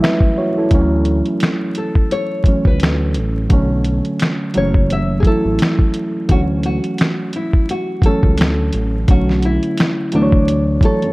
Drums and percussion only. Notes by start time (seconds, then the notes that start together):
0.04 finger snap, snare
0.20 kick
0.71 kick, closed hi-hat
1.05 closed hi-hat
1.26 closed hi-hat
1.40 finger snap, snare, closed hi-hat
1.75 closed hi-hat
1.95 kick
2.11 closed hi-hat
2.44 kick, closed hi-hat
2.65 kick
2.80 snare, closed hi-hat
2.84 finger snap
3.14 closed hi-hat
3.50 kick, closed hi-hat
3.84 closed hi-hat
4.05 closed hi-hat
4.19 finger snap, snare, closed hi-hat
4.54 closed hi-hat
4.74 kick
4.90 closed hi-hat
5.23 kick, closed hi-hat
5.59 snare, closed hi-hat
5.63 finger snap
5.79 kick
5.94 closed hi-hat
6.29 kick, closed hi-hat
6.63 closed hi-hat
6.84 closed hi-hat
6.98 finger snap, snare, closed hi-hat
7.33 closed hi-hat
7.53 kick
7.69 closed hi-hat
8.02 kick, closed hi-hat
8.23 kick
8.38 snare, closed hi-hat
8.42 finger snap
8.73 closed hi-hat
9.08 kick, closed hi-hat
9.29 snare
9.42 closed hi-hat
9.63 closed hi-hat
9.77 finger snap, snare, closed hi-hat
10.12 closed hi-hat
10.32 kick
10.48 closed hi-hat
10.81 kick, closed hi-hat
11.02 closed hi-hat